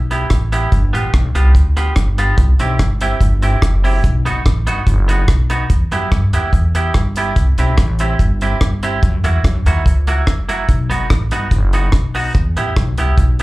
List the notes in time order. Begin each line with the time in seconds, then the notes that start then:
Already playing: B1
0.11 B3 E4 G4, closed hi-hat
0.30 A1, kick, cross-stick, closed hi-hat
0.52 B3 E4 G4, closed hi-hat
0.72 G1, kick, closed hi-hat
0.93 A1 B3 F4 G4, closed hi-hat
1.13 B1, muted clean electric guitar stroke, kick, cross-stick, closed hi-hat
1.35 C2 B3 F4 G4, closed hi-hat
1.55 D2, muted clean electric guitar stroke, kick, closed hi-hat
1.77 B3 F4 G4, closed hi-hat
1.96 G1, kick, cross-stick, closed hi-hat
2.18 B3 F4 G4, closed hi-hat
2.38 C2, kick, closed hi-hat
2.59 B1 C4 E4 G4, closed hi-hat
2.79 G1, muted clean electric guitar stroke, kick, cross-stick, closed hi-hat
3.01 C4 E4 G4, closed hi-hat
3.20 G1, muted clean electric guitar stroke, kick, closed hi-hat
3.42 C4 E4 G4, closed hi-hat
3.62 F#1, kick, cross-stick, closed hi-hat
3.84 C4 E4 G4, open hi-hat
4.04 B1, kick, closed hi-hat
4.25 F#1 B3 D#4 F#4, closed hi-hat
4.46 A1, muted clean electric guitar stroke, kick, cross-stick, closed hi-hat
4.67 G1 B3 D#4 F#4, closed hi-hat
4.87 F#1, muted clean electric guitar stroke, kick, closed hi-hat
5.08 B3 D#4 F#4, closed hi-hat
5.28 B1, kick, cross-stick, closed hi-hat
5.50 B3 D#4 F#4, closed hi-hat
5.70 E2, kick, closed hi-hat
5.91 F#2 B3 E4 G4, closed hi-hat
6.12 G2, muted clean electric guitar stroke, kick, cross-stick, closed hi-hat
6.33 D#2 B3 E4 G4, closed hi-hat
6.53 E2, muted clean electric guitar stroke, kick, closed hi-hat
6.75 B3 E4 G4, closed hi-hat
6.94 G1, kick, cross-stick, closed hi-hat
7.16 B3 E4 G4, closed hi-hat
7.36 C2, kick, closed hi-hat
7.58 B1 C4 E4 G4, closed hi-hat
7.78 A1, muted clean electric guitar stroke, kick, cross-stick, closed hi-hat
7.99 C4 E4 G4, closed hi-hat
8.19 G1, muted clean electric guitar stroke, kick, closed hi-hat
8.41 C4 E4 G4, closed hi-hat
8.61 G1, kick, cross-stick, closed hi-hat
8.83 C4 E4 G4, closed hi-hat
9.03 F#2, kick, closed hi-hat
9.24 E2 A#3 E4 F#4, closed hi-hat
9.44 F#2, muted clean electric guitar stroke, kick, cross-stick, closed hi-hat
9.66 D#2 A#3 E4 F#4, closed hi-hat
9.86 C#2, muted clean electric guitar stroke, kick, closed hi-hat
10.07 A#3 E4 F#4, closed hi-hat
10.27 F#1, kick, cross-stick, closed hi-hat
10.49 A#3 E4 F#4, closed hi-hat
10.68 B1, kick, closed hi-hat
10.90 F#1 B3 D#4 F#4, closed hi-hat
11.10 A1, muted clean electric guitar stroke, kick, cross-stick, closed hi-hat
11.31 G1 B3 D#4 F#4, closed hi-hat
11.51 F#1, muted clean electric guitar stroke, kick, closed hi-hat
11.73 B3 D#4 F#4, closed hi-hat
11.92 B1, kick, cross-stick, closed hi-hat
12.15 B3 D#4 F#4, open hi-hat
12.34 E2, kick, closed hi-hat
12.57 A1 B3 E4 G4, closed hi-hat
12.76 B1, muted clean electric guitar stroke, kick, cross-stick, closed hi-hat
12.98 C2 B3 E4 G4, closed hi-hat
13.18 B1, muted clean electric guitar stroke, kick, closed hi-hat
13.39 closed hi-hat